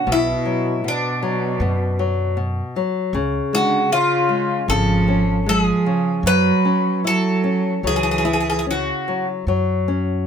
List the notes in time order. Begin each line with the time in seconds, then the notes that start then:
Already playing: F#4
0.07 B1 B2
0.12 E4
0.45 F#3
0.84 B2
0.88 D4
1.23 F#3
1.60 F#2 B2
1.99 F#3
2.37 B2
2.76 F#3
3.13 C#2 C#3
3.53 D3 G#3 F#4
3.92 C#3 C#4 F4
4.29 G#3
4.68 G#1 C#3 F3 A4
5.08 C#4
5.46 F3 G#3 A4
5.60 G#4
5.86 C#3
6.23 F#2 F#3 B4
6.65 C#4
7.04 F#3 E4 A4
7.44 C#4
7.83 C#2 E3 F#3 G#4
7.96 G#4
8.03 G#4
8.11 G#4
8.18 G#4
8.25 E4 G#4
8.33 G#4
8.40 G#4
8.50 G#4
8.59 G#4
8.66 C#3 C#4
8.71 F#4
9.08 F#3
9.47 F#2 F#3
9.88 C#4